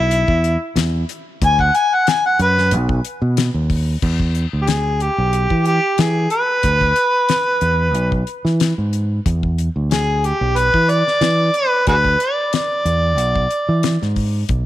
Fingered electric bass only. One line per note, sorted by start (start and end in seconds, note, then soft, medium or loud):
0.00 0.23 B1 loud
0.28 0.56 E2 medium
0.76 1.03 E2 medium
1.42 1.69 D2 loud
2.39 2.73 F#2 loud
2.72 3.00 B1 loud
3.22 3.49 B2 medium
3.54 3.95 D#2 medium
4.03 4.45 E2 loud
4.53 5.08 D2 medium
5.18 5.46 B1 medium
5.51 5.78 E3 medium
5.99 6.26 E3 medium
6.64 6.92 D2 medium
7.62 7.95 E2 medium
7.95 8.22 B1 loud
8.45 8.72 E3 medium
8.78 9.19 G#2 medium
9.26 9.68 E2 loud
9.76 10.31 D2 medium
10.41 10.69 B1 medium
10.74 11.02 E3 medium
11.21 11.49 E3 medium
11.87 12.15 D2 medium
12.85 13.18 E2 medium
13.18 13.46 B1 medium
13.69 13.96 E3 medium
14.02 14.43 G#2 medium
14.49 14.66 B1 loud